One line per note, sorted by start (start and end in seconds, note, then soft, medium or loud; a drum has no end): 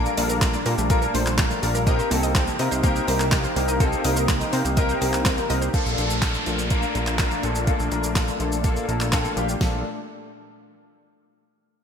0.00 1.83 A#2 medium
0.00 1.85 G3 medium
0.00 0.13 A#3 loud
0.00 0.13 D4 loud
0.00 1.83 D4 medium
0.00 0.13 F4 loud
0.00 0.13 A4 loud
0.00 0.14 A#4 loud
0.06 shaker medium
0.17 0.56 A#1 loud
0.17 0.38 A#3 loud
0.17 0.38 D4 medium
0.17 0.38 F4 medium
0.17 0.38 A4 medium
0.17 0.38 A#4 loud
0.17 0.28 D5 medium
0.17 open hi-hat medium
0.17 shaker medium
0.29 0.40 A#4 medium
0.29 shaker medium
0.41 0.52 A3 medium
0.41 0.62 A#3 medium
0.41 0.62 D4 medium
0.41 0.62 F4 medium
0.41 0.62 A4 medium
0.41 0.62 A#4 loud
0.41 kick loud
0.41 snare medium
0.41 clap loud
0.41 closed hi-hat medium
0.41 shaker medium
0.54 0.64 D5 loud
0.54 shaker medium
0.66 0.76 A#2 loud
0.66 0.86 A#3 medium
0.66 0.86 D4 medium
0.66 0.86 F4 medium
0.66 0.86 A4 medium
0.66 0.76 A#4 loud
0.66 0.86 A#4 medium
0.66 open hi-hat medium
0.66 shaker medium
0.78 1.07 A#1 medium
0.78 0.88 A3 medium
0.78 shaker medium
0.90 1.10 A#3 loud
0.90 1.10 D4 loud
0.90 1.10 F4 loud
0.90 1.10 A4 loud
0.90 1.10 A#4 loud
0.90 1.00 D5 loud
0.90 kick loud
0.90 closed hi-hat medium
0.90 shaker medium
1.02 1.13 A#4 medium
1.02 shaker medium
1.14 1.53 A#1 medium
1.14 1.25 A3 medium
1.14 1.34 A#3 medium
1.14 1.34 D4 medium
1.14 1.34 F4 medium
1.14 1.34 A4 medium
1.14 1.35 C5 loud
1.14 open hi-hat medium
1.14 shaker soft
1.26 clap medium
1.26 shaker medium
1.38 1.59 A#3 medium
1.38 1.59 D4 medium
1.38 1.59 F4 medium
1.38 1.59 A4 medium
1.38 1.49 A#4 loud
1.38 1.59 A#4 medium
1.38 kick loud
1.38 snare medium
1.38 clap loud
1.38 closed hi-hat medium
1.38 shaker medium
1.50 1.61 A3 medium
1.50 shaker medium
1.62 2.01 A#1 medium
1.62 1.83 A#3 medium
1.62 1.83 D4 medium
1.62 1.83 F4 medium
1.62 1.83 A4 medium
1.62 1.83 A#4 loud
1.62 1.73 D5 medium
1.62 open hi-hat medium
1.62 shaker medium
1.75 1.85 A#4 medium
1.75 shaker medium
1.87 5.70 C3 medium
1.87 2.07 A#3 loud
1.87 5.70 A#3 medium
1.87 2.07 C4 loud
1.87 2.07 D#4 loud
1.87 5.70 D#4 medium
1.87 2.07 G4 loud
1.87 2.07 A#4 loud
1.87 1.97 D#5 loud
1.87 kick loud
1.87 closed hi-hat medium
1.87 shaker medium
1.99 2.09 C5 medium
1.99 shaker medium
2.11 2.50 C2 loud
2.11 2.31 A#3 loud
2.11 2.21 A#3 medium
2.11 2.31 C4 medium
2.11 2.31 D#4 medium
2.11 2.31 G4 medium
2.11 2.31 A4 loud
2.11 open hi-hat medium
2.11 shaker medium
2.23 2.33 D#5 medium
2.23 shaker medium
2.35 2.55 A#3 medium
2.35 2.55 C4 medium
2.35 2.55 D#4 medium
2.35 2.55 G4 medium
2.35 2.55 A4 medium
2.35 2.46 C5 loud
2.35 kick loud
2.35 snare medium
2.35 clap loud
2.35 closed hi-hat medium
2.35 shaker medium
2.47 2.58 A#3 medium
2.47 shaker medium
2.59 2.69 C3 loud
2.59 2.79 A#3 medium
2.59 2.80 C4 medium
2.59 2.80 D#4 medium
2.59 2.80 G4 medium
2.59 2.80 A#4 medium
2.59 2.70 D#5 loud
2.59 open hi-hat medium
2.59 shaker medium
2.71 3.01 C2 medium
2.71 2.82 C5 loud
2.71 shaker medium
2.83 3.04 A#3 loud
2.83 2.94 A#3 medium
2.83 3.04 C4 loud
2.83 3.04 D#4 loud
2.83 3.04 G4 loud
2.83 3.04 A#4 loud
2.83 kick loud
2.83 closed hi-hat medium
2.83 shaker medium
2.96 shaker medium
3.07 3.46 C2 medium
3.07 3.28 A#3 medium
3.07 3.28 C4 medium
3.07 3.28 D#4 medium
3.07 3.28 G4 medium
3.07 3.28 A#4 loud
3.07 3.18 C5 medium
3.07 open hi-hat medium
3.07 shaker medium
3.20 3.30 A#3 medium
3.20 clap medium
3.20 shaker medium
3.31 3.52 A#3 medium
3.31 3.52 C4 medium
3.31 3.52 D#4 medium
3.31 3.52 G4 medium
3.31 3.52 A#4 loud
3.31 3.42 D#5 loud
3.31 kick loud
3.31 snare medium
3.31 clap loud
3.31 closed hi-hat medium
3.31 shaker medium
3.44 3.54 C5 medium
3.44 shaker soft
3.56 3.95 C2 loud
3.56 3.76 A#3 medium
3.56 3.67 A#3 medium
3.56 3.76 C4 medium
3.56 3.76 D#4 medium
3.56 3.77 G4 medium
3.56 3.77 A#4 loud
3.56 open hi-hat medium
3.56 shaker medium
3.68 3.79 D#5 medium
3.68 shaker medium
3.80 4.00 A#3 loud
3.80 4.00 C4 loud
3.80 4.01 D#4 loud
3.80 4.01 G4 loud
3.80 4.01 A4 loud
3.80 3.91 C5 loud
3.80 kick loud
3.80 closed hi-hat medium
3.80 shaker medium
3.93 shaker medium
4.04 4.43 C2 loud
4.04 4.25 A#3 medium
4.04 4.25 C4 medium
4.04 4.25 D#4 medium
4.04 4.25 G4 medium
4.04 4.25 A#4 loud
4.04 4.15 D#5 loud
4.04 open hi-hat medium
4.04 shaker medium
4.16 4.27 C5 medium
4.16 shaker medium
4.28 4.49 A#3 medium
4.28 4.39 A#3 medium
4.28 4.49 C4 medium
4.28 4.49 D#4 medium
4.28 4.49 G4 medium
4.28 4.49 A#4 loud
4.28 kick loud
4.28 snare medium
4.28 clap loud
4.28 closed hi-hat medium
4.28 shaker medium
4.40 4.51 D#5 medium
4.40 shaker medium
4.53 4.63 C3 loud
4.53 4.73 A#3 medium
4.53 4.73 C4 medium
4.53 4.73 D#4 medium
4.53 4.73 G4 medium
4.53 4.73 A#4 medium
4.53 4.63 C5 medium
4.53 open hi-hat medium
4.53 shaker medium
4.65 4.94 C2 medium
4.65 4.75 A#3 medium
4.65 shaker medium
4.77 4.97 A#3 loud
4.77 4.97 C4 loud
4.77 4.97 D#4 loud
4.77 4.97 G4 loud
4.77 4.97 A#4 loud
4.77 4.87 D#5 loud
4.77 kick loud
4.77 closed hi-hat medium
4.77 shaker medium
4.89 5.00 C5 medium
4.89 shaker medium
5.01 5.40 C2 medium
5.01 5.21 A#3 medium
5.01 5.12 A#3 medium
5.01 5.21 C4 medium
5.01 5.22 D#4 medium
5.01 5.22 G4 medium
5.01 5.22 A#4 loud
5.01 open hi-hat medium
5.01 shaker soft
5.13 clap medium
5.13 shaker medium
5.25 5.46 A#3 medium
5.25 5.46 C4 medium
5.25 5.46 D#4 medium
5.25 5.46 G4 medium
5.25 5.46 A#4 medium
5.25 5.36 C5 loud
5.25 kick loud
5.25 snare medium
5.25 clap loud
5.25 closed hi-hat medium
5.25 shaker medium
5.37 5.48 A#3 medium
5.37 shaker medium
5.49 5.69 C2 medium
5.49 5.70 A#3 medium
5.49 5.70 C4 medium
5.49 5.70 D#4 medium
5.49 5.70 G4 medium
5.49 5.70 A#4 loud
5.49 5.60 D#5 loud
5.49 open hi-hat medium
5.49 shaker medium
5.62 5.72 C5 medium
5.62 shaker medium
5.74 9.57 A#2 medium
5.74 9.57 A3 medium
5.74 5.94 A#3 loud
5.74 5.94 D4 medium
5.74 9.57 D4 medium
5.74 5.94 F4 loud
5.74 5.94 A4 loud
5.74 kick loud
5.74 closed hi-hat medium
5.74 downlifter medium
5.74 shaker medium
5.86 5.96 A#1 medium
5.86 shaker soft
5.98 6.37 A#1 loud
5.98 6.18 A#3 medium
5.98 6.18 D4 medium
5.98 6.18 F4 medium
5.98 6.18 A4 medium
5.98 closed hi-hat medium
5.98 shaker medium
6.10 shaker medium
6.22 6.42 A#3 medium
6.22 6.42 D4 medium
6.22 6.43 F4 medium
6.22 6.43 A4 medium
6.22 kick loud
6.22 snare medium
6.22 clap loud
6.22 closed hi-hat medium
6.22 shaker medium
6.34 shaker medium
6.46 6.85 A#1 medium
6.46 6.67 A#3 medium
6.46 6.67 D4 medium
6.46 6.67 F4 medium
6.46 6.67 A4 medium
6.46 closed hi-hat soft
6.46 shaker soft
6.59 shaker medium
6.70 6.91 A#3 loud
6.70 6.91 D4 loud
6.70 6.91 F4 loud
6.70 6.91 A#4 loud
6.70 kick loud
6.70 closed hi-hat medium
6.70 shaker medium
6.83 shaker medium
6.95 7.34 A#1 medium
6.95 7.15 A#3 medium
6.95 7.15 D4 medium
6.95 7.15 F4 medium
6.95 7.15 A#4 medium
6.95 closed hi-hat soft
6.95 shaker soft
7.07 clap medium
7.07 shaker medium
7.18 7.39 A#3 loud
7.18 7.39 D4 medium
7.18 7.39 F4 loud
7.18 7.39 A#4 loud
7.18 kick loud
7.18 snare medium
7.18 clap loud
7.18 closed hi-hat medium
7.18 shaker medium
7.31 shaker soft
7.43 7.72 A#1 loud
7.43 7.63 A#3 medium
7.43 7.63 D4 medium
7.43 7.64 F4 medium
7.43 7.64 A4 medium
7.43 closed hi-hat medium
7.43 shaker medium
7.55 shaker medium
7.67 7.87 A#3 loud
7.67 7.88 D4 loud
7.67 7.88 F4 loud
7.67 7.88 A4 loud
7.67 kick loud
7.67 closed hi-hat medium
7.67 shaker medium
7.80 7.89 A#1 loud
7.80 shaker medium
7.91 8.30 A#1 loud
7.91 8.12 A#3 medium
7.91 8.12 D4 medium
7.91 8.12 F4 medium
7.91 8.12 A#4 loud
7.91 closed hi-hat medium
7.91 shaker medium
8.04 shaker medium
8.15 8.36 A#3 medium
8.15 8.36 D4 medium
8.15 8.36 F4 medium
8.15 8.36 A4 medium
8.15 kick loud
8.15 snare medium
8.15 clap loud
8.15 closed hi-hat medium
8.15 shaker medium
8.28 shaker medium
8.40 8.79 A#1 medium
8.40 8.60 A#3 medium
8.40 8.60 D4 medium
8.40 8.60 F4 medium
8.40 8.60 A4 medium
8.40 closed hi-hat soft
8.40 shaker soft
8.52 shaker medium
8.64 8.84 A#3 loud
8.64 8.84 D4 loud
8.64 8.84 F4 loud
8.64 8.84 A4 loud
8.64 kick loud
8.64 closed hi-hat medium
8.64 shaker medium
8.76 shaker medium
8.88 9.27 A#1 medium
8.88 9.08 A#3 medium
8.88 9.08 D4 medium
8.88 9.08 F4 medium
8.88 9.09 A4 medium
8.88 9.11 A#5 medium
8.88 closed hi-hat soft
8.88 shaker soft
9.01 clap medium
9.01 shaker medium
9.12 9.33 A#3 loud
9.12 9.33 D4 medium
9.12 9.33 F4 loud
9.12 9.33 A4 loud
9.12 9.35 G5 medium
9.12 kick loud
9.12 snare medium
9.12 clap loud
9.12 closed hi-hat medium
9.12 shaker medium
9.25 shaker medium
9.36 9.56 A#1 loud
9.36 9.57 A#3 medium
9.36 9.57 D4 medium
9.36 9.57 F4 medium
9.36 9.57 G4 medium
9.36 9.59 F5 medium
9.36 closed hi-hat medium
9.36 shaker medium
9.49 shaker medium
9.61 9.83 A#1 loud
9.61 9.83 A#2 medium
9.61 9.83 A3 medium
9.61 9.83 A#3 medium
9.61 9.83 D4 medium
9.61 9.83 F4 medium
9.61 9.83 A4 medium
9.61 kick loud
9.61 snare loud